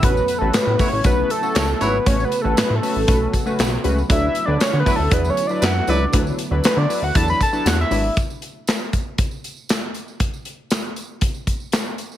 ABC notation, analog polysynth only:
X:1
M:4/4
L:1/16
Q:1/4=118
K:Dlyd
V:1 name="Analog polysynth"
[A,CFB]2 z [A,CFB]2 z [A,CFc] z [A,CFB]2 z [A,CFA]2 z [A,CFB] z | [A,CFB]2 z [A,CFB]2 z [A,CFB] z [A,CFB]2 z [A,CFB]2 z [A,CFB] z | [F,DEB]2 z [F,DEB]2 z [F,DEB] z [F,DEB]2 z [F,DEB]2 z [F,DEB] z | [F,DEB]2 z [F,DEB]2 z [F,DEB] z [F,DEB]2 z [F,DEB]2 z [F,DEB] z |
z16 | z16 |]